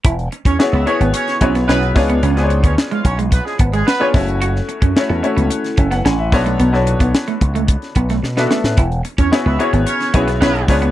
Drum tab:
HH |xxxx--xxxxxx-xox|xxxx-xxxx-xx--ox|x-xx--xxxxxx--ox|x-xx-xxxxxxx----|
SD |----o----o-oo-o-|-o--o----o--o-o-|-o--o----o-oo-o-|-o--o----o-ooooo|
BD |o--o------o---o-|---o--o-o-o---o-|---o------o---o-|---o--o-o-o-----|

HH |xxxx--xxxxxx-xox|
SD |----o----o-oo-o-|
BD |o--o------o---o-|